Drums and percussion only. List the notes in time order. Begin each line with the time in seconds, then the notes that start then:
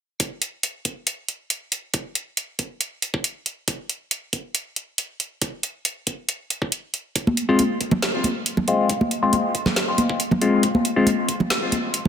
0.20 kick, closed hi-hat
0.42 closed hi-hat
0.63 closed hi-hat
0.85 kick, closed hi-hat
1.07 closed hi-hat
1.28 closed hi-hat
1.50 closed hi-hat
1.72 closed hi-hat
1.94 kick, closed hi-hat
2.15 closed hi-hat
2.37 closed hi-hat
2.59 kick, closed hi-hat
2.81 closed hi-hat
3.02 closed hi-hat
3.14 kick
3.24 closed hi-hat
3.46 closed hi-hat
3.68 kick, closed hi-hat
3.89 closed hi-hat
4.11 closed hi-hat
4.33 kick, closed hi-hat
4.55 closed hi-hat
4.76 closed hi-hat
4.98 closed hi-hat
5.20 closed hi-hat
5.42 kick, closed hi-hat
5.63 closed hi-hat
5.85 closed hi-hat
6.07 kick, closed hi-hat
6.29 closed hi-hat
6.50 closed hi-hat
6.62 kick
6.72 closed hi-hat
6.94 closed hi-hat
7.16 kick, closed hi-hat
7.27 high conga
7.37 closed hi-hat
7.59 closed hi-hat, high conga
7.81 kick, closed hi-hat
7.91 high conga, low conga
8.02 snare, closed hi-hat
8.24 closed hi-hat, high conga
8.46 closed hi-hat
8.57 high conga, low conga
8.68 closed hi-hat
8.89 kick, closed hi-hat
9.01 high conga
9.11 closed hi-hat
9.33 closed hi-hat, high conga
9.55 kick, closed hi-hat
9.66 snare, high conga, low conga
9.76 snare, closed hi-hat
9.98 closed hi-hat, high conga
10.10 kick
10.20 closed hi-hat
10.31 high conga, low conga
10.42 closed hi-hat
10.63 kick, closed hi-hat
10.75 high conga
10.85 closed hi-hat
11.07 closed hi-hat, high conga
11.29 kick, closed hi-hat
11.40 high conga, low conga
11.50 snare, closed hi-hat
11.72 closed hi-hat, high conga
11.94 closed hi-hat